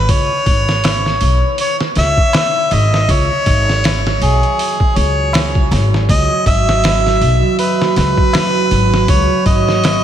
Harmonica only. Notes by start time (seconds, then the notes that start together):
Already playing: B4
0.11 C#5
1.61 C#5
1.99 E5
2.73 D#5
3.11 C#5
4.23 G#4
4.97 C#5
6.10 D#5
6.47 E5
7.59 B4
7.98 B4
9.09 C#5
9.46 D#5